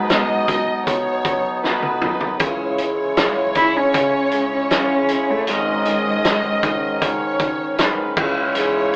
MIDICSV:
0, 0, Header, 1, 7, 480
1, 0, Start_track
1, 0, Key_signature, 4, "minor"
1, 0, Tempo, 769231
1, 1499, Time_signature, 4, 2, 24, 8
1, 5590, End_track
2, 0, Start_track
2, 0, Title_t, "Violin section"
2, 0, Program_c, 0, 48
2, 55, Note_on_c, 0, 75, 115
2, 535, Note_on_c, 0, 73, 109
2, 538, Note_off_c, 0, 75, 0
2, 992, Note_off_c, 0, 73, 0
2, 1018, Note_on_c, 0, 71, 94
2, 1498, Note_on_c, 0, 73, 117
2, 1499, Note_off_c, 0, 71, 0
2, 3394, Note_off_c, 0, 73, 0
2, 3419, Note_on_c, 0, 75, 115
2, 4379, Note_off_c, 0, 75, 0
2, 4381, Note_on_c, 0, 73, 109
2, 4860, Note_off_c, 0, 73, 0
2, 4861, Note_on_c, 0, 71, 89
2, 5100, Note_off_c, 0, 71, 0
2, 5102, Note_on_c, 0, 73, 109
2, 5590, Note_off_c, 0, 73, 0
2, 5590, End_track
3, 0, Start_track
3, 0, Title_t, "Steel-string acoustic guitar"
3, 0, Program_c, 1, 25
3, 55, Note_on_c, 1, 54, 48
3, 64, Note_on_c, 1, 63, 63
3, 68, Note_on_c, 1, 66, 63
3, 288, Note_off_c, 1, 66, 0
3, 294, Note_off_c, 1, 63, 0
3, 296, Note_on_c, 1, 66, 59
3, 297, Note_off_c, 1, 54, 0
3, 301, Note_on_c, 1, 63, 59
3, 1016, Note_on_c, 1, 54, 60
3, 1018, Note_off_c, 1, 63, 0
3, 1018, Note_off_c, 1, 66, 0
3, 1020, Note_on_c, 1, 57, 57
3, 1025, Note_on_c, 1, 63, 55
3, 1028, Note_on_c, 1, 66, 65
3, 1248, Note_off_c, 1, 66, 0
3, 1255, Note_off_c, 1, 63, 0
3, 1256, Note_on_c, 1, 66, 61
3, 1258, Note_off_c, 1, 54, 0
3, 1260, Note_off_c, 1, 57, 0
3, 1262, Note_on_c, 1, 63, 57
3, 1269, Note_on_c, 1, 57, 49
3, 1496, Note_on_c, 1, 49, 77
3, 1498, Note_off_c, 1, 66, 0
3, 1499, Note_off_c, 1, 57, 0
3, 1499, Note_on_c, 1, 52, 86
3, 1501, Note_off_c, 1, 63, 0
3, 1502, Note_on_c, 1, 61, 95
3, 1503, Note_on_c, 1, 64, 77
3, 1505, Note_on_c, 1, 68, 96
3, 1967, Note_off_c, 1, 52, 0
3, 1975, Note_on_c, 1, 52, 61
3, 1976, Note_off_c, 1, 64, 0
3, 1977, Note_off_c, 1, 61, 0
3, 1978, Note_off_c, 1, 49, 0
3, 1980, Note_on_c, 1, 61, 69
3, 1984, Note_on_c, 1, 64, 66
3, 1985, Note_off_c, 1, 68, 0
3, 1987, Note_on_c, 1, 68, 62
3, 2209, Note_off_c, 1, 68, 0
3, 2216, Note_off_c, 1, 64, 0
3, 2216, Note_on_c, 1, 68, 50
3, 2217, Note_off_c, 1, 52, 0
3, 2220, Note_off_c, 1, 61, 0
3, 2230, Note_on_c, 1, 61, 43
3, 2936, Note_on_c, 1, 52, 46
3, 2939, Note_off_c, 1, 61, 0
3, 2941, Note_on_c, 1, 61, 59
3, 2945, Note_off_c, 1, 68, 0
3, 2946, Note_on_c, 1, 64, 56
3, 2948, Note_on_c, 1, 68, 54
3, 3168, Note_off_c, 1, 68, 0
3, 3175, Note_on_c, 1, 68, 56
3, 3176, Note_off_c, 1, 64, 0
3, 3178, Note_off_c, 1, 52, 0
3, 3180, Note_off_c, 1, 61, 0
3, 3183, Note_on_c, 1, 64, 51
3, 3188, Note_on_c, 1, 61, 43
3, 3414, Note_off_c, 1, 61, 0
3, 3415, Note_on_c, 1, 44, 81
3, 3416, Note_off_c, 1, 68, 0
3, 3416, Note_on_c, 1, 49, 81
3, 3418, Note_on_c, 1, 56, 84
3, 3419, Note_off_c, 1, 64, 0
3, 3421, Note_on_c, 1, 61, 84
3, 3422, Note_on_c, 1, 63, 90
3, 3423, Note_on_c, 1, 68, 83
3, 3892, Note_off_c, 1, 56, 0
3, 3894, Note_off_c, 1, 63, 0
3, 3894, Note_on_c, 1, 56, 64
3, 3897, Note_off_c, 1, 44, 0
3, 3897, Note_off_c, 1, 61, 0
3, 3898, Note_off_c, 1, 49, 0
3, 3899, Note_on_c, 1, 61, 60
3, 3902, Note_on_c, 1, 63, 60
3, 3903, Note_off_c, 1, 68, 0
3, 3905, Note_on_c, 1, 68, 57
3, 4127, Note_off_c, 1, 68, 0
3, 4133, Note_off_c, 1, 63, 0
3, 4134, Note_on_c, 1, 68, 64
3, 4136, Note_off_c, 1, 61, 0
3, 4137, Note_off_c, 1, 56, 0
3, 4140, Note_on_c, 1, 63, 58
3, 4143, Note_on_c, 1, 61, 46
3, 4147, Note_on_c, 1, 56, 47
3, 4853, Note_off_c, 1, 56, 0
3, 4856, Note_off_c, 1, 63, 0
3, 4856, Note_on_c, 1, 56, 63
3, 4857, Note_off_c, 1, 61, 0
3, 4860, Note_on_c, 1, 61, 55
3, 4864, Note_on_c, 1, 63, 68
3, 4865, Note_off_c, 1, 68, 0
3, 4867, Note_on_c, 1, 68, 65
3, 5088, Note_off_c, 1, 68, 0
3, 5096, Note_on_c, 1, 68, 67
3, 5098, Note_off_c, 1, 56, 0
3, 5100, Note_off_c, 1, 61, 0
3, 5100, Note_off_c, 1, 63, 0
3, 5102, Note_on_c, 1, 64, 59
3, 5107, Note_on_c, 1, 61, 54
3, 5332, Note_off_c, 1, 61, 0
3, 5333, Note_off_c, 1, 64, 0
3, 5335, Note_on_c, 1, 49, 91
3, 5336, Note_off_c, 1, 68, 0
3, 5336, Note_on_c, 1, 52, 94
3, 5340, Note_on_c, 1, 61, 83
3, 5340, Note_on_c, 1, 64, 94
3, 5343, Note_on_c, 1, 68, 86
3, 5590, Note_off_c, 1, 49, 0
3, 5590, Note_off_c, 1, 52, 0
3, 5590, Note_off_c, 1, 61, 0
3, 5590, Note_off_c, 1, 64, 0
3, 5590, Note_off_c, 1, 68, 0
3, 5590, End_track
4, 0, Start_track
4, 0, Title_t, "Cello"
4, 0, Program_c, 2, 42
4, 0, Note_on_c, 2, 56, 81
4, 544, Note_off_c, 2, 56, 0
4, 2225, Note_on_c, 2, 64, 98
4, 2347, Note_on_c, 2, 61, 87
4, 2356, Note_off_c, 2, 64, 0
4, 2821, Note_off_c, 2, 61, 0
4, 2825, Note_on_c, 2, 61, 87
4, 3307, Note_on_c, 2, 57, 86
4, 3317, Note_off_c, 2, 61, 0
4, 3430, Note_on_c, 2, 56, 86
4, 3439, Note_off_c, 2, 57, 0
4, 4385, Note_off_c, 2, 56, 0
4, 5590, End_track
5, 0, Start_track
5, 0, Title_t, "Harmonium"
5, 0, Program_c, 3, 20
5, 0, Note_on_c, 3, 47, 76
5, 0, Note_on_c, 3, 59, 70
5, 0, Note_on_c, 3, 63, 90
5, 1481, Note_off_c, 3, 47, 0
5, 1481, Note_off_c, 3, 59, 0
5, 1481, Note_off_c, 3, 63, 0
5, 1499, Note_on_c, 3, 56, 65
5, 1502, Note_on_c, 3, 49, 74
5, 1502, Note_on_c, 3, 64, 85
5, 3400, Note_off_c, 3, 56, 0
5, 3401, Note_off_c, 3, 64, 0
5, 3402, Note_off_c, 3, 49, 0
5, 3423, Note_on_c, 3, 44, 76
5, 3423, Note_on_c, 3, 61, 88
5, 3425, Note_on_c, 3, 51, 74
5, 5084, Note_off_c, 3, 44, 0
5, 5084, Note_off_c, 3, 61, 0
5, 5085, Note_off_c, 3, 51, 0
5, 5097, Note_on_c, 3, 56, 75
5, 5099, Note_on_c, 3, 49, 76
5, 5099, Note_on_c, 3, 64, 92
5, 5590, Note_off_c, 3, 49, 0
5, 5590, Note_off_c, 3, 56, 0
5, 5590, Note_off_c, 3, 64, 0
5, 5590, End_track
6, 0, Start_track
6, 0, Title_t, "Grand piano"
6, 0, Program_c, 4, 0
6, 0, Control_c, 4, 64, 127
6, 0, Note_on_c, 4, 35, 62
6, 0, Note_on_c, 4, 47, 70
6, 0, Note_on_c, 4, 54, 46
6, 58, Note_off_c, 4, 47, 0
6, 58, Note_on_c, 4, 47, 53
6, 289, Note_off_c, 4, 54, 0
6, 299, Note_on_c, 4, 54, 53
6, 534, Note_off_c, 4, 47, 0
6, 543, Note_on_c, 4, 47, 55
6, 771, Note_off_c, 4, 54, 0
6, 781, Note_on_c, 4, 54, 56
6, 1012, Note_off_c, 4, 47, 0
6, 1022, Note_on_c, 4, 47, 56
6, 1253, Note_off_c, 4, 54, 0
6, 1262, Note_on_c, 4, 54, 48
6, 1473, Note_off_c, 4, 35, 0
6, 1486, Note_off_c, 4, 47, 0
6, 1494, Note_off_c, 4, 54, 0
6, 1502, Note_on_c, 4, 37, 65
6, 1502, Note_on_c, 4, 49, 63
6, 1507, Control_c, 4, 64, 0
6, 1606, Control_c, 4, 64, 127
6, 1744, Note_on_c, 4, 56, 50
6, 1973, Note_off_c, 4, 49, 0
6, 1983, Note_on_c, 4, 49, 55
6, 2213, Note_off_c, 4, 56, 0
6, 2222, Note_on_c, 4, 56, 54
6, 2454, Note_off_c, 4, 49, 0
6, 2463, Note_on_c, 4, 49, 57
6, 2694, Note_off_c, 4, 56, 0
6, 2703, Note_on_c, 4, 56, 50
6, 2932, Note_off_c, 4, 49, 0
6, 2941, Note_on_c, 4, 49, 54
6, 3171, Note_off_c, 4, 56, 0
6, 3181, Note_on_c, 4, 56, 54
6, 3396, Note_off_c, 4, 37, 0
6, 3406, Note_off_c, 4, 49, 0
6, 3413, Note_off_c, 4, 56, 0
6, 3418, Note_on_c, 4, 44, 71
6, 3419, Note_on_c, 4, 32, 67
6, 3428, Control_c, 4, 64, 0
6, 3538, Control_c, 4, 64, 127
6, 3656, Note_on_c, 4, 51, 49
6, 3890, Note_off_c, 4, 44, 0
6, 3899, Note_on_c, 4, 44, 61
6, 4131, Note_off_c, 4, 51, 0
6, 4140, Note_on_c, 4, 51, 55
6, 4369, Note_off_c, 4, 44, 0
6, 4378, Note_on_c, 4, 44, 61
6, 4609, Note_off_c, 4, 51, 0
6, 4619, Note_on_c, 4, 51, 51
6, 4849, Note_off_c, 4, 44, 0
6, 4859, Note_on_c, 4, 44, 59
6, 5074, Note_off_c, 4, 32, 0
6, 5085, Note_off_c, 4, 51, 0
6, 5092, Note_off_c, 4, 44, 0
6, 5098, Note_on_c, 4, 37, 63
6, 5109, Control_c, 4, 64, 0
6, 5223, Control_c, 4, 64, 127
6, 5336, Note_on_c, 4, 44, 54
6, 5590, Note_off_c, 4, 37, 0
6, 5590, Note_off_c, 4, 44, 0
6, 5590, End_track
7, 0, Start_track
7, 0, Title_t, "Drums"
7, 60, Note_on_c, 9, 42, 74
7, 63, Note_on_c, 9, 38, 97
7, 122, Note_off_c, 9, 42, 0
7, 126, Note_off_c, 9, 38, 0
7, 301, Note_on_c, 9, 36, 68
7, 301, Note_on_c, 9, 42, 64
7, 363, Note_off_c, 9, 36, 0
7, 363, Note_off_c, 9, 42, 0
7, 543, Note_on_c, 9, 36, 79
7, 543, Note_on_c, 9, 42, 85
7, 605, Note_off_c, 9, 36, 0
7, 605, Note_off_c, 9, 42, 0
7, 778, Note_on_c, 9, 42, 61
7, 779, Note_on_c, 9, 36, 93
7, 840, Note_off_c, 9, 42, 0
7, 841, Note_off_c, 9, 36, 0
7, 1025, Note_on_c, 9, 38, 54
7, 1087, Note_off_c, 9, 38, 0
7, 1139, Note_on_c, 9, 48, 55
7, 1201, Note_off_c, 9, 48, 0
7, 1258, Note_on_c, 9, 45, 81
7, 1321, Note_off_c, 9, 45, 0
7, 1376, Note_on_c, 9, 43, 81
7, 1439, Note_off_c, 9, 43, 0
7, 1494, Note_on_c, 9, 42, 91
7, 1498, Note_on_c, 9, 36, 100
7, 1556, Note_off_c, 9, 42, 0
7, 1561, Note_off_c, 9, 36, 0
7, 1735, Note_on_c, 9, 42, 64
7, 1798, Note_off_c, 9, 42, 0
7, 1977, Note_on_c, 9, 42, 72
7, 1981, Note_on_c, 9, 38, 108
7, 2039, Note_off_c, 9, 42, 0
7, 2043, Note_off_c, 9, 38, 0
7, 2214, Note_on_c, 9, 42, 68
7, 2219, Note_on_c, 9, 36, 73
7, 2277, Note_off_c, 9, 42, 0
7, 2281, Note_off_c, 9, 36, 0
7, 2458, Note_on_c, 9, 42, 93
7, 2461, Note_on_c, 9, 36, 75
7, 2520, Note_off_c, 9, 42, 0
7, 2523, Note_off_c, 9, 36, 0
7, 2692, Note_on_c, 9, 42, 64
7, 2755, Note_off_c, 9, 42, 0
7, 2935, Note_on_c, 9, 42, 77
7, 2940, Note_on_c, 9, 38, 93
7, 2998, Note_off_c, 9, 42, 0
7, 3002, Note_off_c, 9, 38, 0
7, 3173, Note_on_c, 9, 42, 67
7, 3235, Note_off_c, 9, 42, 0
7, 3413, Note_on_c, 9, 42, 81
7, 3476, Note_off_c, 9, 42, 0
7, 3652, Note_on_c, 9, 42, 68
7, 3715, Note_off_c, 9, 42, 0
7, 3897, Note_on_c, 9, 42, 78
7, 3901, Note_on_c, 9, 38, 106
7, 3960, Note_off_c, 9, 42, 0
7, 3963, Note_off_c, 9, 38, 0
7, 4136, Note_on_c, 9, 42, 68
7, 4138, Note_on_c, 9, 36, 80
7, 4199, Note_off_c, 9, 42, 0
7, 4200, Note_off_c, 9, 36, 0
7, 4378, Note_on_c, 9, 42, 90
7, 4379, Note_on_c, 9, 36, 81
7, 4441, Note_off_c, 9, 42, 0
7, 4442, Note_off_c, 9, 36, 0
7, 4614, Note_on_c, 9, 42, 64
7, 4616, Note_on_c, 9, 36, 86
7, 4676, Note_off_c, 9, 42, 0
7, 4678, Note_off_c, 9, 36, 0
7, 4857, Note_on_c, 9, 42, 74
7, 4861, Note_on_c, 9, 38, 103
7, 4919, Note_off_c, 9, 42, 0
7, 4924, Note_off_c, 9, 38, 0
7, 5097, Note_on_c, 9, 36, 102
7, 5097, Note_on_c, 9, 49, 68
7, 5160, Note_off_c, 9, 36, 0
7, 5160, Note_off_c, 9, 49, 0
7, 5335, Note_on_c, 9, 42, 91
7, 5397, Note_off_c, 9, 42, 0
7, 5590, End_track
0, 0, End_of_file